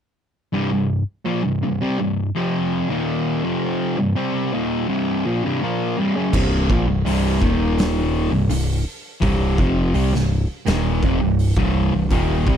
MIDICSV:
0, 0, Header, 1, 4, 480
1, 0, Start_track
1, 0, Key_signature, -3, "minor"
1, 0, Tempo, 722892
1, 359, Time_signature, 4, 2, 24, 8
1, 8347, End_track
2, 0, Start_track
2, 0, Title_t, "Distorted electric guitar"
2, 0, Program_c, 0, 30
2, 349, Note_on_c, 0, 36, 99
2, 354, Note_on_c, 0, 43, 111
2, 468, Note_off_c, 0, 36, 0
2, 470, Note_off_c, 0, 43, 0
2, 477, Note_on_c, 0, 36, 65
2, 480, Note_on_c, 0, 43, 69
2, 671, Note_off_c, 0, 36, 0
2, 673, Note_off_c, 0, 43, 0
2, 832, Note_on_c, 0, 46, 88
2, 834, Note_on_c, 0, 53, 95
2, 950, Note_off_c, 0, 46, 0
2, 951, Note_off_c, 0, 53, 0
2, 959, Note_on_c, 0, 36, 57
2, 960, Note_on_c, 0, 43, 68
2, 1073, Note_off_c, 0, 36, 0
2, 1078, Note_off_c, 0, 43, 0
2, 1081, Note_on_c, 0, 36, 61
2, 1086, Note_on_c, 0, 43, 70
2, 1199, Note_off_c, 0, 43, 0
2, 1202, Note_off_c, 0, 36, 0
2, 1202, Note_on_c, 0, 48, 82
2, 1206, Note_on_c, 0, 55, 96
2, 1316, Note_off_c, 0, 48, 0
2, 1318, Note_off_c, 0, 55, 0
2, 1319, Note_on_c, 0, 36, 60
2, 1322, Note_on_c, 0, 43, 72
2, 1514, Note_off_c, 0, 36, 0
2, 1516, Note_off_c, 0, 43, 0
2, 1563, Note_on_c, 0, 41, 74
2, 1563, Note_on_c, 0, 53, 84
2, 1566, Note_on_c, 0, 48, 89
2, 1918, Note_off_c, 0, 41, 0
2, 1918, Note_off_c, 0, 53, 0
2, 1920, Note_off_c, 0, 48, 0
2, 1921, Note_on_c, 0, 39, 83
2, 1923, Note_on_c, 0, 46, 97
2, 1926, Note_on_c, 0, 51, 96
2, 2276, Note_off_c, 0, 39, 0
2, 2279, Note_off_c, 0, 46, 0
2, 2279, Note_on_c, 0, 41, 102
2, 2280, Note_off_c, 0, 51, 0
2, 2283, Note_on_c, 0, 48, 100
2, 2286, Note_on_c, 0, 53, 100
2, 2637, Note_off_c, 0, 41, 0
2, 2639, Note_off_c, 0, 48, 0
2, 2641, Note_off_c, 0, 53, 0
2, 2642, Note_on_c, 0, 36, 55
2, 2645, Note_on_c, 0, 43, 68
2, 2758, Note_off_c, 0, 43, 0
2, 2761, Note_on_c, 0, 48, 87
2, 2764, Note_on_c, 0, 55, 97
2, 2765, Note_off_c, 0, 36, 0
2, 2767, Note_on_c, 0, 60, 99
2, 2998, Note_off_c, 0, 48, 0
2, 3000, Note_off_c, 0, 55, 0
2, 3001, Note_off_c, 0, 60, 0
2, 3006, Note_on_c, 0, 39, 81
2, 3009, Note_on_c, 0, 46, 97
2, 3012, Note_on_c, 0, 51, 92
2, 3237, Note_off_c, 0, 39, 0
2, 3240, Note_on_c, 0, 36, 98
2, 3241, Note_off_c, 0, 46, 0
2, 3243, Note_on_c, 0, 43, 95
2, 3244, Note_off_c, 0, 51, 0
2, 3247, Note_on_c, 0, 48, 95
2, 3478, Note_off_c, 0, 36, 0
2, 3480, Note_off_c, 0, 43, 0
2, 3481, Note_off_c, 0, 48, 0
2, 3488, Note_on_c, 0, 46, 83
2, 3494, Note_on_c, 0, 53, 79
2, 3602, Note_off_c, 0, 46, 0
2, 3605, Note_off_c, 0, 53, 0
2, 3610, Note_on_c, 0, 36, 84
2, 3618, Note_on_c, 0, 43, 91
2, 3723, Note_off_c, 0, 36, 0
2, 3727, Note_off_c, 0, 43, 0
2, 3734, Note_on_c, 0, 46, 84
2, 3741, Note_on_c, 0, 53, 79
2, 3741, Note_on_c, 0, 58, 92
2, 3965, Note_off_c, 0, 46, 0
2, 3968, Note_off_c, 0, 53, 0
2, 3968, Note_off_c, 0, 58, 0
2, 3969, Note_on_c, 0, 36, 78
2, 3972, Note_on_c, 0, 43, 92
2, 4083, Note_off_c, 0, 36, 0
2, 4084, Note_off_c, 0, 43, 0
2, 4090, Note_on_c, 0, 49, 102
2, 4091, Note_on_c, 0, 42, 83
2, 4203, Note_off_c, 0, 42, 0
2, 4203, Note_off_c, 0, 49, 0
2, 4208, Note_on_c, 0, 36, 99
2, 4210, Note_on_c, 0, 43, 109
2, 4215, Note_on_c, 0, 48, 108
2, 4442, Note_off_c, 0, 36, 0
2, 4443, Note_off_c, 0, 43, 0
2, 4445, Note_off_c, 0, 48, 0
2, 4451, Note_on_c, 0, 46, 97
2, 4455, Note_on_c, 0, 53, 104
2, 4563, Note_off_c, 0, 46, 0
2, 4565, Note_off_c, 0, 53, 0
2, 4566, Note_on_c, 0, 36, 60
2, 4568, Note_on_c, 0, 43, 71
2, 4675, Note_off_c, 0, 36, 0
2, 4678, Note_off_c, 0, 43, 0
2, 4683, Note_on_c, 0, 36, 89
2, 4685, Note_on_c, 0, 48, 105
2, 4686, Note_on_c, 0, 43, 94
2, 4914, Note_off_c, 0, 36, 0
2, 4916, Note_on_c, 0, 39, 90
2, 4920, Note_off_c, 0, 43, 0
2, 4920, Note_off_c, 0, 48, 0
2, 4925, Note_on_c, 0, 46, 96
2, 4926, Note_on_c, 0, 51, 98
2, 5514, Note_off_c, 0, 39, 0
2, 5519, Note_off_c, 0, 46, 0
2, 5519, Note_off_c, 0, 51, 0
2, 5522, Note_on_c, 0, 36, 67
2, 5527, Note_on_c, 0, 43, 64
2, 5633, Note_off_c, 0, 36, 0
2, 5635, Note_off_c, 0, 43, 0
2, 5641, Note_on_c, 0, 36, 60
2, 5643, Note_on_c, 0, 43, 71
2, 5836, Note_off_c, 0, 36, 0
2, 5837, Note_off_c, 0, 43, 0
2, 6113, Note_on_c, 0, 36, 97
2, 6117, Note_on_c, 0, 43, 115
2, 6119, Note_on_c, 0, 48, 108
2, 6352, Note_off_c, 0, 36, 0
2, 6354, Note_off_c, 0, 43, 0
2, 6355, Note_off_c, 0, 48, 0
2, 6365, Note_on_c, 0, 41, 91
2, 6369, Note_on_c, 0, 48, 104
2, 6371, Note_on_c, 0, 53, 104
2, 6596, Note_off_c, 0, 48, 0
2, 6597, Note_off_c, 0, 41, 0
2, 6600, Note_off_c, 0, 53, 0
2, 6604, Note_on_c, 0, 48, 91
2, 6605, Note_on_c, 0, 55, 103
2, 6717, Note_off_c, 0, 48, 0
2, 6718, Note_off_c, 0, 55, 0
2, 6722, Note_on_c, 0, 36, 66
2, 6727, Note_on_c, 0, 43, 72
2, 6915, Note_off_c, 0, 36, 0
2, 6917, Note_off_c, 0, 43, 0
2, 7081, Note_on_c, 0, 39, 85
2, 7083, Note_on_c, 0, 46, 103
2, 7086, Note_on_c, 0, 51, 106
2, 7314, Note_off_c, 0, 39, 0
2, 7315, Note_off_c, 0, 46, 0
2, 7317, Note_off_c, 0, 51, 0
2, 7327, Note_on_c, 0, 41, 87
2, 7330, Note_on_c, 0, 48, 90
2, 7437, Note_off_c, 0, 41, 0
2, 7439, Note_off_c, 0, 48, 0
2, 7441, Note_on_c, 0, 36, 69
2, 7447, Note_on_c, 0, 43, 70
2, 7633, Note_off_c, 0, 36, 0
2, 7636, Note_off_c, 0, 43, 0
2, 7681, Note_on_c, 0, 36, 91
2, 7684, Note_on_c, 0, 43, 104
2, 7686, Note_on_c, 0, 48, 99
2, 7913, Note_off_c, 0, 36, 0
2, 7914, Note_off_c, 0, 43, 0
2, 7915, Note_off_c, 0, 48, 0
2, 7922, Note_on_c, 0, 36, 71
2, 7926, Note_on_c, 0, 43, 81
2, 8039, Note_off_c, 0, 43, 0
2, 8041, Note_off_c, 0, 36, 0
2, 8042, Note_on_c, 0, 46, 123
2, 8044, Note_on_c, 0, 39, 98
2, 8047, Note_on_c, 0, 51, 124
2, 8273, Note_off_c, 0, 46, 0
2, 8274, Note_off_c, 0, 39, 0
2, 8275, Note_off_c, 0, 51, 0
2, 8284, Note_on_c, 0, 48, 102
2, 8287, Note_on_c, 0, 55, 112
2, 8347, Note_off_c, 0, 48, 0
2, 8347, Note_off_c, 0, 55, 0
2, 8347, End_track
3, 0, Start_track
3, 0, Title_t, "Picked electric bass"
3, 0, Program_c, 1, 34
3, 4207, Note_on_c, 1, 24, 101
3, 4431, Note_off_c, 1, 24, 0
3, 4443, Note_on_c, 1, 34, 94
3, 4558, Note_off_c, 1, 34, 0
3, 4566, Note_on_c, 1, 24, 79
3, 4673, Note_off_c, 1, 24, 0
3, 4677, Note_on_c, 1, 24, 100
3, 4906, Note_off_c, 1, 24, 0
3, 4926, Note_on_c, 1, 27, 90
3, 5500, Note_off_c, 1, 27, 0
3, 5513, Note_on_c, 1, 24, 85
3, 5631, Note_off_c, 1, 24, 0
3, 5636, Note_on_c, 1, 24, 88
3, 5864, Note_off_c, 1, 24, 0
3, 6124, Note_on_c, 1, 24, 96
3, 6348, Note_off_c, 1, 24, 0
3, 6364, Note_on_c, 1, 29, 94
3, 6588, Note_off_c, 1, 29, 0
3, 6601, Note_on_c, 1, 36, 91
3, 6714, Note_off_c, 1, 36, 0
3, 6720, Note_on_c, 1, 24, 82
3, 6945, Note_off_c, 1, 24, 0
3, 7084, Note_on_c, 1, 27, 99
3, 7306, Note_off_c, 1, 27, 0
3, 7325, Note_on_c, 1, 29, 91
3, 7435, Note_off_c, 1, 29, 0
3, 7446, Note_on_c, 1, 24, 78
3, 7667, Note_off_c, 1, 24, 0
3, 7681, Note_on_c, 1, 24, 107
3, 7903, Note_off_c, 1, 24, 0
3, 7920, Note_on_c, 1, 24, 84
3, 8031, Note_off_c, 1, 24, 0
3, 8036, Note_on_c, 1, 27, 106
3, 8260, Note_off_c, 1, 27, 0
3, 8276, Note_on_c, 1, 36, 89
3, 8347, Note_off_c, 1, 36, 0
3, 8347, End_track
4, 0, Start_track
4, 0, Title_t, "Drums"
4, 4205, Note_on_c, 9, 36, 97
4, 4206, Note_on_c, 9, 49, 111
4, 4271, Note_off_c, 9, 36, 0
4, 4272, Note_off_c, 9, 49, 0
4, 4446, Note_on_c, 9, 36, 107
4, 4513, Note_off_c, 9, 36, 0
4, 4689, Note_on_c, 9, 46, 61
4, 4756, Note_off_c, 9, 46, 0
4, 4924, Note_on_c, 9, 36, 94
4, 4991, Note_off_c, 9, 36, 0
4, 5167, Note_on_c, 9, 46, 66
4, 5179, Note_on_c, 9, 38, 106
4, 5233, Note_off_c, 9, 46, 0
4, 5245, Note_off_c, 9, 38, 0
4, 5642, Note_on_c, 9, 46, 66
4, 5708, Note_off_c, 9, 46, 0
4, 6122, Note_on_c, 9, 36, 101
4, 6123, Note_on_c, 9, 46, 57
4, 6189, Note_off_c, 9, 36, 0
4, 6189, Note_off_c, 9, 46, 0
4, 6363, Note_on_c, 9, 36, 101
4, 6429, Note_off_c, 9, 36, 0
4, 6601, Note_on_c, 9, 46, 57
4, 6667, Note_off_c, 9, 46, 0
4, 6736, Note_on_c, 9, 38, 37
4, 6803, Note_off_c, 9, 38, 0
4, 7081, Note_on_c, 9, 46, 57
4, 7093, Note_on_c, 9, 38, 118
4, 7148, Note_off_c, 9, 46, 0
4, 7160, Note_off_c, 9, 38, 0
4, 7321, Note_on_c, 9, 36, 117
4, 7388, Note_off_c, 9, 36, 0
4, 7563, Note_on_c, 9, 46, 62
4, 7629, Note_off_c, 9, 46, 0
4, 7680, Note_on_c, 9, 36, 116
4, 7746, Note_off_c, 9, 36, 0
4, 8038, Note_on_c, 9, 36, 105
4, 8038, Note_on_c, 9, 46, 58
4, 8104, Note_off_c, 9, 46, 0
4, 8105, Note_off_c, 9, 36, 0
4, 8278, Note_on_c, 9, 36, 105
4, 8344, Note_off_c, 9, 36, 0
4, 8347, End_track
0, 0, End_of_file